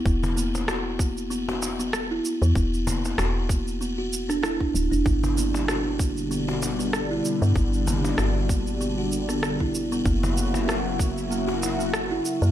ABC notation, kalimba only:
X:1
M:4/4
L:1/16
Q:"Swing 16ths" 1/4=96
K:Edor
V:1 name="Kalimba"
B,2 ^A, z F2 A, z B, F2 B, z E z B, | B,2 ^A, z F2 A, z B, F z D E D z D | B,2 ^A, z F2 A, z B, F2 B, z E z B, | B,2 ^A, z F2 A, z B, F2 B, z E z B, |
^A,2 A, z F2 A, z A, F2 A, z E z A, |]